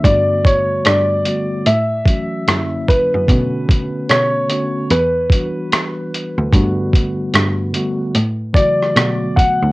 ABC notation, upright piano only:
X:1
M:4/4
L:1/8
Q:"Swing 16ths" 1/4=74
K:Bm
V:1 name="Upright piano"
d c d2 e3 B- | B2 c2 B4- | B4- B d2 f |]